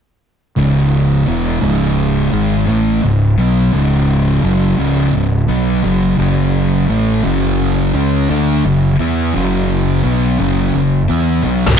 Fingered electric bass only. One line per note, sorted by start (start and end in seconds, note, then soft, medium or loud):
0.57 1.24 C#1 medium
1.27 1.60 E1 medium
1.62 2.29 C#1 loud
2.33 2.65 G#1 medium
2.67 3.00 A1 loud
3.02 3.35 C#1 medium
3.37 3.70 B1 medium
3.72 4.39 C#1 loud
4.44 4.76 F#1 medium
4.78 5.11 C#1 medium
5.14 5.46 C#1 medium
5.49 5.81 B1 loud
5.84 6.16 F#1 loud
6.19 6.85 F#1 medium
6.90 7.22 A1 medium
7.25 7.90 F#1 loud
7.94 8.26 C#2 medium
8.30 8.62 D2 loud
8.64 8.97 F#1 medium
8.99 9.32 E2 medium
9.35 10.01 F#1 medium
10.05 10.37 B1 medium
10.40 10.72 F#1 medium
10.75 11.07 F#1 medium
11.10 11.42 E2 loud
11.45 11.77 B1 loud